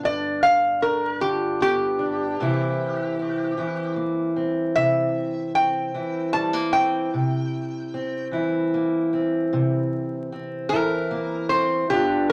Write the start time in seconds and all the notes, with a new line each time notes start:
Already playing: D3 B3 D4 F4
0.03 G2 D5
0.43 F5
0.82 D4 A#4
1.20 D3 F4 G4
1.60 B3 G4
1.99 D4
2.40 C3 E3 A#3 C4 E4
3.19 C4
3.57 E3 E4
3.96 A#3
4.36 C4
4.75 C3 E5
5.55 C4 G5
5.94 E3 E4
6.33 G3 A5
6.53 A#3
6.73 C4 G5
7.14 C3
7.94 C4
8.32 E3 E4
8.74 A#3
9.13 C4
9.53 C3
10.32 C4
10.69 E3 E4 A#4
11.11 A#3
11.49 C4 C5
11.90 G2 D3 B3 D4 F4 G4